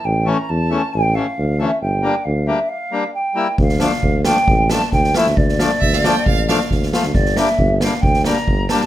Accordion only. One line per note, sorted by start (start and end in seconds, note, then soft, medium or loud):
0.25 0.37 E3 medium
0.25 0.37 A3 medium
0.25 0.38 C#4 medium
0.69 0.81 E3 medium
0.69 0.82 A3 medium
0.69 0.82 C#4 medium
1.14 1.26 E3 medium
1.14 1.26 A3 soft
1.14 1.27 C#4 medium
1.59 1.70 E3 medium
1.59 1.71 A3 medium
1.59 1.71 C#4 medium
2.02 2.14 G3 medium
2.02 2.15 A#3 medium
2.02 2.15 D4 medium
2.47 2.59 G3 medium
2.47 2.59 A#3 medium
2.47 2.60 D4 medium
2.92 3.04 G3 soft
2.92 3.04 A#3 soft
2.92 3.04 D4 medium
3.35 3.47 G3 medium
3.35 3.48 A#3 medium
3.35 3.48 E4 medium
3.79 3.92 F3 medium
3.79 3.92 A3 medium
3.79 3.92 D4 medium
4.26 4.37 F3 medium
4.26 4.37 A3 medium
4.26 4.38 D4 medium
4.71 4.82 F3 medium
4.71 4.82 A3 medium
4.71 4.82 D4 medium
5.15 5.26 F3 medium
5.15 5.26 A3 medium
5.15 5.27 E4 medium
5.59 5.70 F3 medium
5.59 5.71 A3 medium
5.59 5.72 D4 medium
6.04 6.15 F3 medium
6.04 6.15 A3 medium
6.04 6.16 D4 medium
6.49 6.59 F3 medium
6.49 6.60 A3 medium
6.49 6.60 D4 medium
6.92 7.04 F3 medium
6.92 7.04 A3 medium
6.92 7.05 F4 medium
7.37 7.48 G3 medium
7.37 7.48 A#3 medium
7.37 7.49 D4 medium
7.83 7.93 G3 medium
7.83 7.94 A#3 medium
7.83 7.94 D4 medium
8.25 8.37 G3 medium
8.25 8.37 A#3 medium
8.25 8.38 D4 medium
8.70 8.81 G3 medium
8.70 8.82 A#3 medium
8.70 8.82 D4 medium